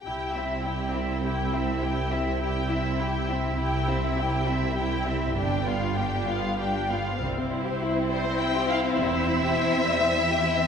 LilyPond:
<<
  \new Staff \with { instrumentName = "Violin section" } { \time 6/8 \key c \major \tempo 4. = 68 g''8 e''8 g''8 e''8 g''8 e''8 | g''8 e''8 g''8 e''8 g''8 e''8 | g''8 e''8 g''8 e''8 g''8 e''8 | g''8 f''8 g''8 f''8 g''8 f''8 |
r4. c''8 g''8 f''8 | e''2. | }
  \new Staff \with { instrumentName = "Violin section" } { \time 6/8 \key c \major << { g'8 e'8 g'8 e'8 g'8 e'8 | g'8 e'8 g'8 e'8 g'8 e'8 | g'8 e'8 g'8 e'8 g'8 e'8 | g'8 f'8 g'8 f'8 g'8 f'8 |
c''2.~ | c''2. | } \\ { r2. | r2. | r2. | r2. |
g16 c'16 e'16 g'16 e'16 c'16 g16 c'16 e'16 g'16 e'16 c'16 | g16 c'16 e'16 g'16 e'16 c'16 g16 c'16 e'16 g'16 e'16 c'16 | } >> }
  \new Staff \with { instrumentName = "Viola section" } { \time 6/8 \key c \major e'8 c'8 e'8 c'8 e'8 c'8 | e'8 c'8 e'8 c'8 e'8 c'8 | e'8 c'8 e'8 c'8 e'8 c'8 | d'8 b8 d'8 b8 d'8 b8 |
<c' e'>2.~ | <c' e'>2. | }
  \new Staff \with { instrumentName = "Cello section" } { \clef bass \time 6/8 \key c \major c2.~ | c2. | c2. | g,2~ g,8 r8 |
c,2. | e,2. | }
  \new Staff \with { instrumentName = "Double bass section" } { \clef bass \time 6/8 \key c \major c,2.~ | c,2. | c,2. | g,,2~ g,,8 r8 |
c,4 r2 | e,,4 r2 | }
>>